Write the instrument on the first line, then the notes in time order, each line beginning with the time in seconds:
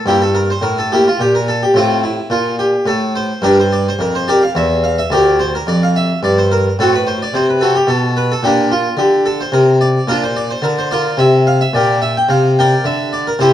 harpsichord
0.05 G2 A#3 E4 G4
0.22 A4
0.34 A#4
0.50 C5
0.61 A2 A#4
0.78 A4
0.92 A#3 E4 G4
1.07 F4
1.19 A#2 G4
1.35 A#4
1.48 A4
1.63 G4
1.74 A2 A3 C4 F4
2.03 E4
2.30 A#2 F4
2.59 G4
2.86 A2 A4
3.16 C5
3.42 G2 D4 G4 A#4
3.59 C5
3.72 D5
3.88 C5
3.99 F2 A#4
4.15 C5
4.28 G4 A#4 D5
4.44 F5
4.55 E2 E5
4.84 F5
4.99 E5
5.10 D2 G4 A#4 D5
5.40 C5
5.55 A#4
5.67 F2 D5
5.83 F5
5.96 E5
6.23 G2 D5
6.38 C5
6.52 A#4
6.79 A2 C4 F#4 A4
6.95 B4
7.07 C5
7.22 D5
7.34 C3 C5
7.49 B4
7.61 C4 F#4 A4
7.76 G4
7.87 B2 A4
8.17 B4
8.32 A4
8.43 A#2 A#3 D4 G4
8.72 F4
8.97 D3 G4
9.26 A4
9.41 C5
9.52 C3 A#4
9.81 D5
10.08 A#2 D4 F4 A#4
10.23 C5
10.36 D5
10.50 C5
10.62 D3 A#4
10.78 C5
10.91 F4 A#4 D5
11.17 C3 E5
11.47 F5
11.61 E5
11.73 A#2 G4 A#4 D5
12.02 E5
12.17 G5
12.29 C3 F5
12.59 A#4 D5 G5
12.84 D3 E5
13.13 D5
13.27 A#4
13.39 C3 E4 G4 C5